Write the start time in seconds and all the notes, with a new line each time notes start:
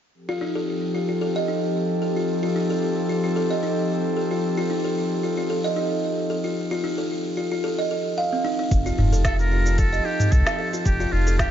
0.14 F3 C4 G4 A4
0.29 F4
0.41 D#4
0.55 A4
0.95 F4
1.09 F4
1.21 A4
1.36 D#5
1.48 D#4
2.02 A4
2.16 F4
2.43 F4
2.56 D#4
2.70 A4
3.10 F4
3.24 F4
3.36 A4
3.51 D#5
3.63 D#4
4.17 A4
4.31 F4
4.57 F4
4.70 D#4
4.84 A4
5.23 F4
5.37 F4
5.50 A4
5.64 D#5
5.76 D#4
6.30 A4
6.44 F4
6.71 F4
6.84 D#4
6.98 A4
7.37 F4
7.52 F4
7.64 A4
7.79 D#5
7.91 A4
8.18 F5
8.33 C4
8.45 D#4
8.59 D#4
8.71 F1 F3 C4 G4 A5, kick, open hi-hat, shaker
8.86 F4, open hi-hat, shaker
8.98 F1 D#4, mid tom
9.12 A4, open hi-hat, shaker
9.25 A4, kick, snare, open hi-hat, shaker
9.39 A#4, open hi-hat, shaker
9.52 F4
9.66 F4, shaker
9.78 A4, kick, open hi-hat, shaker
9.93 D#5, open hi-hat, shaker
10.05 D#4 G4
10.20 mid tom, open hi-hat, shaker
10.32 C2 A4, kick, open hi-hat, shaker
10.47 snare, open hi-hat, shaker
10.59 A4
10.73 F4, open hi-hat, shaker
10.85 F1 G4, kick, open hi-hat, shaker
11.00 F4, open hi-hat, shaker
11.12 F1 D#4 F4
11.27 A4, open hi-hat, shaker
11.38 G4, kick, snare, open hi-hat, shaker